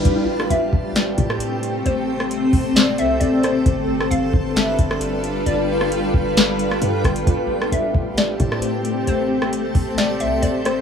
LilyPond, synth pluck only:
\new Staff \with { instrumentName = "Synth pluck" } { \time 4/4 \key a \minor \tempo 4 = 133 r4 e''4 d''2 | c''2 d''8 e''8 d''8 c''8 | r4 f''4 e''2 | d''2 r2 |
r4 e''4 d''2 | c''2 d''8 e''8 d''8 c''8 | }